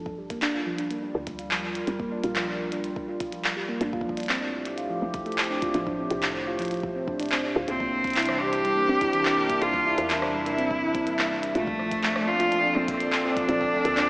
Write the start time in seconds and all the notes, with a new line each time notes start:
Already playing: G1 G3
0.06 kick
0.18 G3
0.30 A#3, kick, closed hi-hat
0.42 D4, clap, closed hi-hat
0.54 F4
0.66 F3 F4
0.78 D4, closed hi-hat
0.91 A#3, closed hi-hat
1.03 D4
1.15 D2
1.27 kick, closed hi-hat
1.35 A#4
1.39 F4, closed hi-hat
1.51 F3, clap
1.63 F3
1.75 closed hi-hat
1.87 G1 G3, closed hi-hat
1.99 A#3, kick
2.12 D4
2.24 A#1 F4, closed hi-hat
2.36 F3, clap, closed hi-hat
2.48 D4
2.60 A#3
2.72 D4, closed hi-hat
2.84 closed hi-hat
2.96 kick
3.08 F4
3.20 F3, kick, closed hi-hat
3.32 F3, closed hi-hat
3.45 clap
3.57 G3
3.69 A#3
3.81 A1 A2 D4, closed hi-hat
3.93 F4, kick
4.01 kick
4.05 F3
4.09 A3, kick
4.17 D4, closed hi-hat
4.20 closed hi-hat
4.26 C5, clap, closed hi-hat
4.29 C4, closed hi-hat
4.34 G4, closed hi-hat
4.38 D4, closed hi-hat
4.66 closed hi-hat
4.78 F4, closed hi-hat
4.90 F3
5.02 E1 F3
5.14 kick, closed hi-hat
5.26 A3, closed hi-hat
5.32 closed hi-hat
5.38 C4, clap, closed hi-hat
5.44 closed hi-hat
5.50 D4
5.62 F4, kick, closed hi-hat
5.74 A1 F3, closed hi-hat
5.87 D4, kick
5.99 C4
6.11 C2 D4, closed hi-hat
6.23 clap, closed hi-hat
6.47 F4
6.59 F3, closed hi-hat
6.62 closed hi-hat
6.65 closed hi-hat
6.68 closed hi-hat
6.71 F3, closed hi-hat
6.74 closed hi-hat
6.77 closed hi-hat
6.80 kick, closed hi-hat
6.95 C4
7.08 D4, kick
7.20 D4, closed hi-hat
7.23 closed hi-hat
7.26 closed hi-hat
7.29 C4, clap, closed hi-hat
7.44 G1 D4
7.56 D2 F4
7.68 C2 C3 A#3 C4, closed hi-hat
7.78 G3 A#3 D4, kick
8.04 kick, closed hi-hat
8.07 closed hi-hat
8.10 closed hi-hat
8.13 E4, clap, closed hi-hat
8.16 closed hi-hat
8.20 closed hi-hat
8.23 closed hi-hat
8.26 E3, cross-stick, closed hi-hat
8.41 E3 G4
8.53 cross-stick, closed hi-hat
8.65 G3, closed hi-hat
8.75 A#3 A#4
8.89 G1 C4
9.01 E4, kick, cross-stick, closed hi-hat
9.10 E3 E5, closed hi-hat
9.25 C4, clap
9.37 A#3
9.49 A#3, kick, closed hi-hat
9.62 C2 F4, closed hi-hat
9.74 kick
9.86 E4
9.98 E2 E3, closed hi-hat
10.10 E3 E4, clap, closed hi-hat
10.22 cross-stick
10.34 G3
10.46 A#3, closed hi-hat
10.58 C4, closed hi-hat
10.70 E4, kick
10.82 E3
10.95 C4, kick, closed hi-hat
11.07 A#3, closed hi-hat
11.19 A#3, clap
11.43 closed hi-hat
11.55 A#1 A#2 A3 F4, closed hi-hat
11.67 F3, kick
11.79 F3, cross-stick
11.91 kick, closed hi-hat
12.02 A3 C4 D5, clap
12.16 A#3, cross-stick
12.24 D4 F4 A4
12.40 F4, cross-stick, closed hi-hat
12.52 F3, closed hi-hat
12.64 D4
12.76 F1 A#3 C4
12.88 A#3, kick, cross-stick, closed hi-hat
12.91 cross-stick
12.94 cross-stick
12.97 cross-stick, closed hi-hat
13.12 clap
13.25 D4 F4
13.37 F3, kick, closed hi-hat
13.49 A#1 F3, kick, closed hi-hat
13.61 kick
13.73 A3
13.85 D2 A#3, closed hi-hat
13.97 D4, clap, closed hi-hat